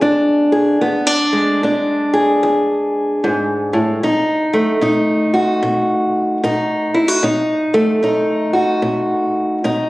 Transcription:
steel-string acoustic guitar
Already playing: G#3 G#4
0.01 E2 D4
0.52 G#4
0.81 E2 B3
1.07 D4
1.33 G#3
1.63 E2 D4
2.14 G#4
2.43 E2
3.24 G#2
3.73 A2
4.03 B2 D#4
4.53 A3
4.81 B2 D#4
5.34 F#4
5.63 B2
6.44 B2 D#4
6.94 E4
7.08 F#4
7.23 B2 D#4
7.74 A3
8.03 B2 D#4
8.53 F#4
8.82 B2
9.64 B2 D#4

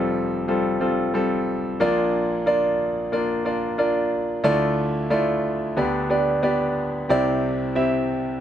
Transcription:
grand piano
Already playing: F1 F2 G3 C4 F4 A4
0.48 G3 C4 F4 A4
0.80 G3 C4 F4 A4
1.14 G3 C4 F4 A4
1.80 A#1 A#2 A#3 D4 F4 D5
2.46 A#3 D4 F4 D5
3.12 A#3 D4 F4 D5
3.45 A#3 D4 F4 D5
3.78 A#3 D4 F4 D5
4.44 D2 D3 A3 E4 F4 D5
5.10 A3 E4 F4 D5
5.77 D2 D3 B3 D4 G4 D5
6.10 B3 D4 G4 D5
6.43 B3 D4 G4 D5
7.09 C2 C3 C4 E4 G4 D5
7.75 C4 E4 G4 E5

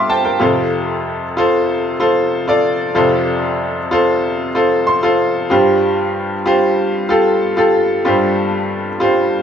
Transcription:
upright piano
Already playing: G2 G3 F4 G4 C5 E5 F5 C6 D6
0.09 C5 G5 A5
0.24 A#4 G5
0.39 F2 C3 F4 A4 C5
1.37 F4 A4 C5
2.00 F4 A4 C5
2.48 F4 A4 D5
2.95 F2 C3 F4 A4 C5
3.91 F4 A4 C5
4.55 F4 A4 C5
4.87 C6
5.03 F4 A4 C5
5.50 G2 G3 F4 G4 C5
6.46 F4 G4 C5
7.09 F4 G4 A4
7.57 F4 G4 A4
8.05 G2 G3 F4 G4 C5
9.00 F4 G4 C5

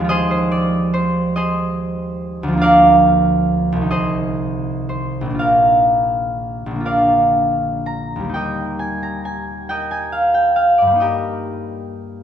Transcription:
harp
Already playing: D#2 F3 D#4 G4 A#4 F5
0.00 G#3
0.04 F4
0.09 G#4 C5 D#5
0.31 C5
0.52 D5
0.94 C5
1.36 G#4 C5 D#5
2.43 D2
2.48 F3
2.53 A#3
2.57 F4
2.62 A#4 D5 F5
3.72 C2 D#3
3.81 D#4
3.91 G#4 C5 D#5
4.89 C5
5.21 A#1
5.25 D#3
5.30 A#3
5.35 F4
5.39 A#4 F5
6.66 A#1
6.71 D3
6.76 A#3
6.80 F4
6.85 A#4 D5 F5
7.86 A#5
8.16 D#2
8.20 G3
8.25 A#3
8.29 D#4
8.34 A#4 D#5 G5
8.79 G#5
9.03 A#5
9.25 G#5
9.69 A#4 D#5 G5
9.91 G#5
10.12 F5
10.34 G5
10.56 F5
10.78 G2 D5
10.87 G3
10.91 A#3
10.96 D#4
11.00 G4 A#4 D#5

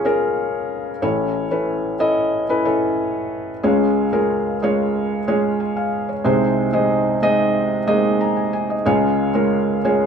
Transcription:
felt piano
Already playing: C#2 C#3 C#4 F4 G#4 C#5
0.05 C#4 F4 G#4 A#4
1.02 A1 A2 C#4 E4 A4 C#5
1.51 C#4 E4 A4 B4
1.99 C#4 E4 A4 D#5
2.49 C#4 E4 A4 B4
2.65 C#4 E4 A4 C#5
3.63 C#2 C#3 G#3 C#4 F4 G#4 C#5
4.13 G#3 C#4 F4 G#4 A#4
4.62 G#3 C#4 F4 G#4 C#5
5.28 G#3 C#4 F4 G#4 C#5
5.60 G#5
5.77 F5
6.09 C#5
6.24 C2 C3 G#3 C4 D#4 G#4 C5
6.73 G#3 C4 D#4 G#4 D#5
7.22 G#3 C4 D#4 G#4 D#5
7.87 G#3 A#3 D#4 G#4 D#5
7.94 C4
8.21 A#5
8.37 G#5
8.53 G#5
8.70 D#5
8.85 C#2 C#3 G#3 C#4 F4 G#4 C#5
9.34 G#3 C#4 F4 G#4 A#4
9.84 G#3 C#4 F4 G#4 C#5

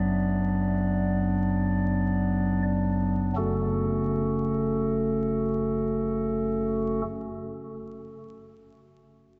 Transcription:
pipe organ
Already playing: F#1 F#2 F#3 B3 D4 D5
3.36 F#1 F#2 C#3 A3 C#4 F#4 A4

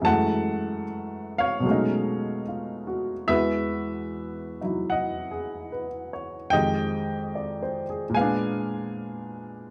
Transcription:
grand piano
Already playing: G#4
0.01 F#2 E3 G#3 A5
0.06 A3 F#5
1.38 C#5 F5
1.60 B2 F#3
1.65 G#3 A3
1.69 C#4 D#4
2.48 F4
2.87 F#4
3.27 E2 E3 G#3 F#4 B4 E5
4.61 F#3 D#4 E4
4.90 D#5 F#5
5.31 G#4
5.72 B4
6.13 C#5
6.50 F2 D#3 D#5 G5
6.55 G#3 G4
7.35 D5
7.62 C5
7.90 G#4
8.09 A#2
8.14 G#3 B3 F5 G#5
8.21 D4

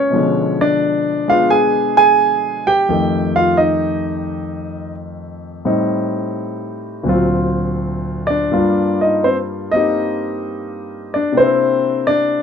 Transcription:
grand piano
Already playing: A#2 G#3 A#3 C#4 C#5
0.10 B2 F3 G#3
0.16 D3
0.61 D4 D5
1.28 G#3 B3 D4 F4 F5
1.50 G#4 G#5
1.97 G#4 G#5
2.67 G4 G5
2.89 F2 D#3 A3 G4
3.36 F4 F5
3.57 D#4 D#5
5.65 A2 G3 C4 D#4
7.03 D2 A#2 F#3
7.08 C4 F4
8.27 D4 D5
8.52 G2 G3 A#3 F4
9.01 D#4 D#5
9.24 C4 C5
9.72 A#3 C4 D#4 D#5
9.76 G4
11.14 D4 D5
11.32 C3 A#3
11.37 C4 D4 C5
11.42 E4
12.07 D4 D5

